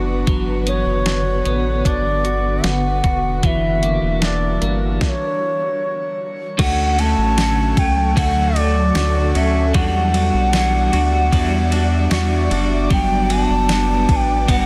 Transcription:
Already playing: F#1 E3 G3 B3 D4 F#4 B4
0.27 G1 D3 F#3 B3, kick, closed hi-hat
0.67 B3 C#5, closed hi-hat
0.86 F#1
1.06 D4, snare, closed hi-hat
1.45 A1 B3, closed hi-hat
1.85 G1 D4 D5, kick, closed hi-hat
2.24 F#4, closed hi-hat
2.64 G1 B3 F#5, snare, closed hi-hat
3.04 E1 F#4, kick, closed hi-hat
3.43 F#1 E3 G3 D4 F#4 A#4 E5, kick, closed hi-hat
3.83 A#3, closed hi-hat
4.02 E1
4.22 D4 D5, snare, closed hi-hat
4.61 G1 A#3, closed hi-hat
5.01 D5, kick, snare
5.09 C#5
6.58 D2 D3 F#3 A3 C#4 F#4 A4 F#5 A5 C#6, kick, crash, ride
6.97 A3 C#4 F#4 A5, ride
7.18 A1
7.37 D3 A3 C#4 F#4, snare, ride, tambourine
7.77 C#2 A3 C#4 G5, kick, ride
8.16 D2 D3 A3 C#4 F#4 F#5, kick, ride
8.55 A3 F#4 D5, ride
8.95 D2 D3 A3 F#4, snare, ride, tambourine
9.34 D2 A3 C#4 F#4 E5, ride
9.74 E2 E3 G3 D4 F#4 D5 E5 F#5 D6, kick, ride
10.13 G3 B3 D4 F#4, ride
10.34 B1
10.52 E3 G3 D4 F#4, snare, ride, tambourine
10.92 D2 G3 D4 F#4, ride
11.32 E2 E3 G3 B3 D4 F#4, kick, ride
11.71 G3 D4 F#4, ride
12.11 E2 E3 G3 D4 F#4, snare, ride, tambourine
12.50 F#1 G3 D4 F#4, ride
12.90 G1 F#3 G3 B3 D4 B4 G5, kick, ride
13.29 B3 D4 F#4 A5, ride
13.49 F#1
13.69 G3 B3 D4 F#4, snare, ride, tambourine
14.09 A1 B3 D4 A5, kick, ride
14.16 G5
14.48 G1 G3 B3 D4 F#4 F#5, kick, ride

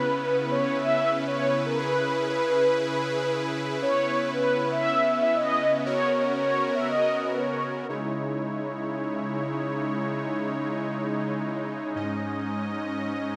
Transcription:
Already playing: C#3 B3 C#4 E4 B4
0.51 C#5
0.77 E5
1.27 C#5
1.66 A#4
1.78 G#4 B4
2.29 B4
2.55 B4
3.82 B3 C#4 C#5
4.33 B4
4.71 E5
5.22 E5
5.35 D#5
5.85 F#4 A#4 C#5
6.37 C#5
6.75 E5
6.88 D#5
7.26 B4
7.39 C#5
7.89 C#3 G#3 D#4 E4 C#5
11.95 G#2 C#4 D#5

